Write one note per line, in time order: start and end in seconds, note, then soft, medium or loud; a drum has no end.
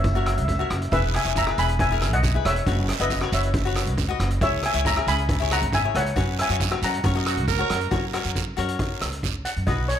0.00 0.38 F#1 loud
0.00 closed hi-hat medium
0.04 0.12 E5 soft
0.04 kick loud
0.14 0.42 F#4 medium
0.14 0.42 A#4 medium
0.14 0.43 C#5 medium
0.14 0.20 E5 medium
0.22 0.28 E5 soft
0.26 0.36 E5 medium
0.26 cross-stick medium
0.26 closed hi-hat medium
0.37 0.62 C#2 medium
0.37 0.43 E5 soft
0.37 closed hi-hat medium
0.45 0.51 E5 medium
0.45 kick medium
0.45 closed hi-hat medium
0.52 0.58 E5 medium
0.59 0.79 F#4 medium
0.59 0.79 A#4 medium
0.59 0.80 C#5 medium
0.59 0.65 E5 medium
0.70 0.87 F#1 medium
0.70 cross-stick medium
0.70 closed hi-hat medium
0.82 closed hi-hat medium
0.92 1.17 E1 medium
0.92 1.12 E4 medium
0.92 1.12 G#4 medium
0.92 1.13 B4 medium
0.92 1.15 E5 loud
0.92 kick loud
0.92 closed hi-hat medium
0.92 long guiro medium
1.14 1.36 E5 medium
1.14 1.37 G#5 medium
1.14 cross-stick medium
1.14 closed hi-hat medium
1.24 1.50 E1 medium
1.24 1.38 E4 medium
1.24 1.39 G#4 medium
1.24 1.39 C#5 medium
1.24 closed hi-hat medium
1.36 1.58 E5 medium
1.36 1.59 A#5 medium
1.36 kick medium
1.36 closed hi-hat medium
1.36 short guiro medium
1.47 1.73 E4 medium
1.47 1.74 G#4 medium
1.47 1.74 B4 medium
1.47 cross-stick medium
1.58 2.12 E1 medium
1.58 1.79 G#5 medium
1.58 1.79 B5 loud
1.58 closed hi-hat medium
1.58 short guiro medium
1.69 closed hi-hat medium
1.79 2.11 E5 medium
1.79 2.14 G#5 loud
1.79 kick loud
1.79 closed hi-hat medium
1.79 long guiro medium
1.90 2.17 E4 medium
1.90 2.17 G#4 medium
1.90 2.18 A#4 medium
2.02 cross-stick medium
2.02 closed hi-hat medium
2.02 short guiro medium
2.12 2.37 B1 medium
2.12 2.44 D#5 medium
2.12 2.47 F#5 loud
2.12 closed hi-hat medium
2.23 kick medium
2.23 closed hi-hat medium
2.23 short guiro medium
2.34 2.54 E4 medium
2.34 2.54 G#4 medium
2.34 2.55 B4 medium
2.45 2.62 E1 medium
2.45 2.97 C#5 medium
2.45 3.02 E5 medium
2.45 cross-stick medium
2.45 closed hi-hat loud
2.56 closed hi-hat medium
2.67 2.92 F#1 medium
2.67 2.87 F#4 medium
2.67 2.87 B4 medium
2.67 2.88 C#5 medium
2.67 kick loud
2.67 closed hi-hat medium
2.67 long guiro medium
2.89 cross-stick medium
2.89 closed hi-hat medium
2.99 3.25 F#1 medium
2.99 3.13 F#4 medium
2.99 3.13 B4 medium
2.99 3.31 B4 medium
2.99 3.34 D#5 medium
2.99 3.14 E5 medium
2.99 closed hi-hat medium
3.10 kick medium
3.10 closed hi-hat medium
3.10 short guiro medium
3.21 3.48 F#4 medium
3.21 3.48 B4 medium
3.21 3.49 C#5 medium
3.21 cross-stick medium
3.32 3.88 F#1 loud
3.32 4.17 C#5 medium
3.32 4.17 E5 medium
3.32 closed hi-hat medium
3.32 short guiro medium
3.43 closed hi-hat medium
3.54 kick loud
3.54 closed hi-hat medium
3.54 long guiro medium
3.65 3.92 F#4 medium
3.65 3.92 B4 medium
3.65 3.93 C#5 medium
3.76 cross-stick medium
3.76 closed hi-hat medium
3.76 short guiro medium
3.87 4.12 C#2 medium
3.87 closed hi-hat medium
3.98 kick medium
3.98 closed hi-hat medium
3.98 short guiro medium
4.08 4.29 F#4 medium
4.08 4.29 B4 medium
4.08 4.30 D#5 medium
4.19 4.36 F#1 loud
4.19 cross-stick medium
4.19 closed hi-hat medium
4.30 closed hi-hat medium
4.41 4.66 C#2 loud
4.41 4.61 E4 medium
4.41 4.62 G#4 medium
4.41 4.62 C#5 medium
4.41 4.63 C#5 medium
4.41 4.65 E5 loud
4.41 kick loud
4.41 closed hi-hat medium
4.41 long guiro medium
4.63 4.85 E5 medium
4.63 4.87 G#5 medium
4.63 cross-stick medium
4.63 closed hi-hat medium
4.74 4.99 C#2 medium
4.74 4.88 E4 medium
4.74 4.88 G#4 medium
4.74 4.89 C#5 medium
4.74 closed hi-hat medium
4.85 5.07 E5 medium
4.85 5.09 A#5 loud
4.85 kick medium
4.85 closed hi-hat medium
4.85 short guiro medium
4.96 5.23 E4 medium
4.96 5.23 G#4 medium
4.96 5.24 A#4 medium
4.96 cross-stick medium
5.07 5.63 C#2 loud
5.07 5.49 G#5 medium
5.07 5.53 B5 loud
5.07 closed hi-hat medium
5.07 short guiro medium
5.18 closed hi-hat medium
5.29 kick loud
5.29 closed hi-hat medium
5.29 long guiro medium
5.40 5.66 E4 medium
5.40 5.67 G#4 medium
5.40 5.67 C#5 medium
5.51 5.72 F#5 medium
5.51 5.75 A#5 loud
5.51 cross-stick medium
5.51 closed hi-hat medium
5.51 short guiro medium
5.61 5.87 G#1 medium
5.61 closed hi-hat medium
5.73 5.94 E5 medium
5.73 5.96 G#5 loud
5.73 kick medium
5.73 closed hi-hat medium
5.73 short guiro medium
5.83 6.03 E4 medium
5.83 6.04 G#4 medium
5.83 6.04 C#5 medium
5.95 6.11 C#2 loud
5.95 6.37 C#5 medium
5.95 6.41 F#5 medium
5.95 cross-stick medium
5.95 closed hi-hat medium
6.06 closed hi-hat medium
6.16 6.41 F#2 medium
6.16 6.36 F#4 medium
6.16 6.37 B4 medium
6.16 6.37 C#5 medium
6.16 kick loud
6.16 closed hi-hat medium
6.16 long guiro medium
6.39 6.81 E5 medium
6.39 6.85 G#5 loud
6.39 cross-stick medium
6.39 closed hi-hat medium
6.49 6.74 F#2 medium
6.49 6.63 F#4 medium
6.49 6.63 B4 medium
6.49 6.64 C#5 medium
6.49 closed hi-hat medium
6.60 kick medium
6.60 closed hi-hat medium
6.60 short guiro medium
6.71 6.98 F#4 medium
6.71 6.98 B4 medium
6.71 6.99 C#5 medium
6.71 cross-stick medium
6.82 6.99 F#2 loud
6.82 7.45 F#5 medium
6.82 7.45 A#5 medium
6.82 closed hi-hat medium
6.82 short guiro medium
6.93 closed hi-hat medium
7.04 7.39 F#2 loud
7.04 7.13 F#4 medium
7.04 7.13 A#4 medium
7.04 7.14 C#5 medium
7.04 kick loud
7.04 closed hi-hat medium
7.04 long guiro medium
7.15 7.41 F#4 medium
7.15 7.42 A#4 medium
7.15 7.42 D#5 medium
7.25 7.46 F#4 medium
7.25 cross-stick medium
7.25 closed hi-hat medium
7.25 short guiro medium
7.37 7.62 C#2 medium
7.37 closed hi-hat medium
7.48 7.89 A#4 loud
7.48 kick medium
7.48 closed hi-hat medium
7.48 short guiro medium
7.58 7.78 F#4 medium
7.58 7.79 A#4 medium
7.58 7.79 C#5 medium
7.70 7.87 F#2 medium
7.70 cross-stick medium
7.70 closed hi-hat medium
7.81 closed hi-hat medium
7.91 8.17 F#2 medium
7.91 8.05 F#4 medium
7.91 8.05 A#4 medium
7.91 8.06 C#5 medium
7.91 kick loud
7.91 closed hi-hat medium
7.91 long guiro medium
8.13 8.40 F#4 medium
8.13 8.40 A#4 medium
8.13 8.41 C#5 medium
8.13 cross-stick medium
8.13 closed hi-hat medium
8.25 8.50 F#2 medium
8.25 closed hi-hat medium
8.35 kick medium
8.35 closed hi-hat medium
8.35 short guiro medium
8.57 8.74 F#2 medium
8.57 9.10 F#4 medium
8.57 9.10 A#4 medium
8.57 9.11 C#5 medium
8.57 closed hi-hat medium
8.68 closed hi-hat medium
8.79 kick loud
8.79 closed hi-hat medium
8.79 long guiro medium
9.01 9.43 C#2 medium
9.01 cross-stick medium
9.01 closed hi-hat medium
9.01 short guiro medium
9.12 closed hi-hat medium
9.23 kick medium
9.23 closed hi-hat medium
9.23 short guiro medium
9.45 9.66 F#5 medium
9.45 closed hi-hat medium
9.45 short guiro medium
9.56 9.65 F#2 medium
9.56 closed hi-hat medium
9.67 9.92 B1 medium
9.67 9.87 D#4 medium
9.67 9.87 F#4 medium
9.67 9.87 B4 medium
9.67 9.87 D#5 medium
9.67 kick loud
9.67 closed hi-hat medium
9.67 long guiro medium
9.88 9.99 C#5 medium
9.88 closed hi-hat medium
9.88 short guiro medium